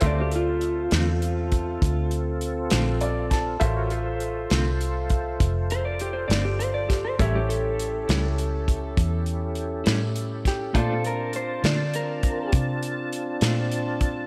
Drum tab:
HH |xxxxxxxxxxxx|xxxxxxxxxxxx|xxxxxxxxxxxx|xxxxxxxxxxxx|
SD |---o-----o-o|---o-----o-o|---o-----o-o|---o-----o--|
BD |o----oo----o|o----oo----o|o----oo----o|o----oo----o|